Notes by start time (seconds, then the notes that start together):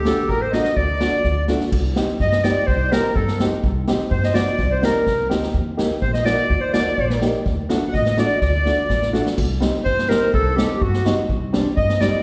Already playing: D2 G4
0.05 A3 D4 F#4 A4, snare
0.28 A1 A#4, kick
0.40 C5
0.52 A3 D4 F#4 D#5, snare
0.65 snare
0.77 D2 D5, kick
1.01 A3 D4 F#4, snare
1.24 D2, kick, snare
1.48 A3 D4 F#4, snare
1.61 snare
1.72 C2, kick, crash
1.84 snare
1.96 C4 D#4 G4, snare
2.08 snare
2.20 G2 D#5, kick, snare
2.32 snare
2.44 C4 D#4 G4 D5, snare
2.66 C2 C5, kick
2.91 C4 D#4 G4 A#4, snare
3.04 snare
3.15 G2 A4, kick
3.28 snare
3.40 C4 D#4 G4, snare
3.64 C2, kick
3.88 C4 D#4 G4, snare
4.00 snare
4.10 G2 C5, kick
4.23 D#5, snare
4.33 C4 D#4 F#4 D5, snare
4.58 C2, kick, snare
4.70 C5
4.82 C4 D#4 G4 A#4, snare
5.07 C2, kick, snare
5.29 D2 C4 D#4 G4, snare
5.43 snare
5.54 D#2, kick
5.77 A#3 D#4 G4, snare
5.91 snare
6.02 A#1 C5, kick
6.13 D#5, snare
6.25 A#3 D#4 F#4 D5, snare
6.50 D#2, kick
6.60 C5
6.73 A#3 D#4 F#4 D5, snare
6.98 A#1, kick
7.10 snare
7.22 A#3 D#4 G4, snare
7.46 D2, kick, snare
7.69 A3 D4 F#4, snare
7.88 F#5
7.93 A1 D#5, kick, snare
7.97 D#5
8.06 snare
8.17 A3 D4 F#4 D5, snare
8.41 D2 D5, kick, snare
8.65 A3 D4 F#4, snare
8.90 A1, kick, snare
9.02 snare
9.13 A3 D4 F#4, snare
9.26 snare
9.37 C2, kick, crash
9.60 G3 C4 D#4, snare
9.74 snare
9.83 G2 C5, kick
9.99 snare
10.08 G3 C4 D#4 A#4, snare
10.32 C2 A4, kick
10.56 G3 C4 D#4 G4, snare
10.75 G4
10.81 G2 F#4, kick
10.94 snare
11.05 G3 C4 D#4, snare
11.29 C2, kick
11.53 G3 C4 D4, snare
11.66 snare
11.76 G2 D#5, kick
11.89 snare
12.01 G3 C4 D#4 D5, snare